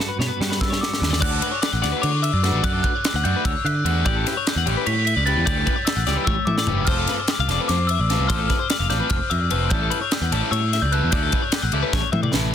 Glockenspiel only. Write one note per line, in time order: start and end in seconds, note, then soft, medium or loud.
0.61 0.82 E6 medium
0.81 1.19 D6 medium
1.22 1.79 F#6 medium
2.02 2.23 D6 medium
2.23 2.65 E6 loud
2.64 2.82 F#6 loud
2.83 3.21 F#6 medium
3.24 3.45 G6 medium
3.45 3.66 E6 loud
3.65 4.07 F#6 loud
4.05 4.62 G6 loud
4.87 5.04 B6 loud
5.05 5.25 B6 loud
5.26 5.35 A6 loud
5.46 5.84 G6 loud
5.85 6.24 E6 medium
6.25 6.45 E6 loud
6.45 6.84 D6 medium
6.85 7.43 F6 loud
7.68 7.90 D6 loud
7.87 8.30 E6 loud
8.27 8.37 F6 loud
8.48 8.91 F6 medium
8.90 9.11 G6 medium
9.10 9.31 F6 loud
9.30 9.68 E6 medium
9.70 10.47 G6 loud
10.51 10.83 E6 medium
10.82 10.93 G6 medium
10.92 11.11 F#6 medium
11.11 12.30 G6 medium